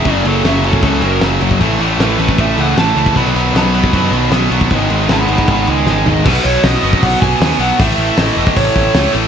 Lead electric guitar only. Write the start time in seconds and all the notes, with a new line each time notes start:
Already playing: E5
0.14 D5
0.26 A4
0.47 E5
0.66 A4
0.85 A4
1.04 A#4
2.00 B4
2.41 E5
2.61 F#5
2.79 A5
3.16 B5
3.57 B5
5.12 F#5 B5
5.33 F#5 B5
5.51 F#5 B5
5.70 D#5 G#5
5.90 D#5 G#5
6.09 D#5
6.24 B4
6.43 C#5
6.64 D#5
7.03 F#5
7.21 G#5
7.60 F#5
7.80 E5
8.19 D#5
8.57 C#5